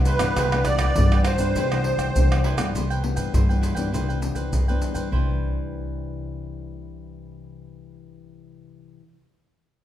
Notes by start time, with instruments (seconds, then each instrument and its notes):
Already playing: upright bass C2, nylon-string guitar G2 E3 B3 D4
0.05 cavaquinho E4 B4 C5 G5, accordion B4, pandeiro, maracas
0.19 upright bass G2, nylon-string guitar E3 B3 D4, cavaquinho B4 C5 G5, pandeiro, tamborim, maracas
0.36 upright bass C2, nylon-string guitar C3, cavaquinho E4 B4 C5 G5, pandeiro, tamborim, maracas, surdo
0.52 nylon-string guitar E3 B3 D4, cavaquinho B4 C5 G5, pandeiro, tamborim, maracas
0.65 accordion D5, muted cavaquinho stroke, pandeiro, tamborim, maracas, surdo
0.79 cavaquinho B4 C5 G5, pandeiro, tamborim, maracas
0.96 upright bass G2, nylon-string guitar G2 E3 B3 D4, pandeiro, maracas, surdo
1.12 cavaquinho B4 C5 G5, pandeiro, tamborim, maracas
1.25 cavaquinho E4 B4 C5 G5, accordion C5, pandeiro, tamborim, maracas
1.38 nylon-string guitar E3 B3 D4, cavaquinho B4 C5 G5, pandeiro, maracas
1.55 upright bass C2, nylon-string guitar C3, cavaquinho E4 B4 C5 G5, pandeiro, maracas, surdo
1.72 nylon-string guitar E3 D4, cavaquinho B4 C5 G5, pandeiro, tamborim, maracas
1.84 muted cavaquinho stroke, pandeiro
1.98 upright bass C2, cavaquinho C5 G5, pandeiro, tamborim, maracas
2.15 upright bass C2, nylon-string guitar G2 E3 B3 D4, pandeiro, maracas, surdo
2.32 pandeiro, tamborim, maracas
2.44 cavaquinho E4 B4 C5 G5, pandeiro
2.57 upright bass G2, nylon-string guitar E3 B3 D4, cavaquinho B4 C5 G5, pandeiro, tamborim, maracas
2.74 upright bass C2, nylon-string guitar C3, cavaquinho E4 B4 C5 G5, pandeiro, maracas, surdo
2.90 cavaquinho B4 C5 G5, pandeiro, maracas
3.03 nylon-string guitar E3 B3 D4, muted cavaquinho stroke, pandeiro
3.16 upright bass G2, cavaquinho B4 C5 G5, pandeiro, maracas
3.34 upright bass G2, nylon-string guitar G2, cavaquinho E4 B4 C5 G5, pandeiro, maracas, surdo
3.49 nylon-string guitar E3 B3 D4, cavaquinho B4 C5 G5, pandeiro, maracas
3.61 cavaquinho E4 B4 C5 G5, pandeiro, maracas
3.75 upright bass G2, nylon-string guitar E3 B3 D4, cavaquinho B4 C5 G5, pandeiro, maracas
3.92 upright bass C2, nylon-string guitar C3 E3 B3 D4, cavaquinho E4 B4 C5 G5, pandeiro, maracas, surdo
4.08 cavaquinho B4 C5 G5, pandeiro, maracas
4.21 nylon-string guitar E3 B3 D4, muted cavaquinho stroke, pandeiro, maracas
4.35 upright bass C2, cavaquinho B4 C5 G5, pandeiro, maracas
4.53 upright bass G2, nylon-string guitar G2, pandeiro, maracas, surdo
4.68 nylon-string guitar E3 B3 D4, cavaquinho B4 C5 G5, pandeiro, maracas
4.82 pandeiro, maracas
4.94 upright bass G2, cavaquinho B4 C5 G5, pandeiro, maracas
5.11 upright bass C2, nylon-string guitar C3 E3, cavaquinho E4 B4 C5 G5, surdo
5.18 nylon-string guitar D4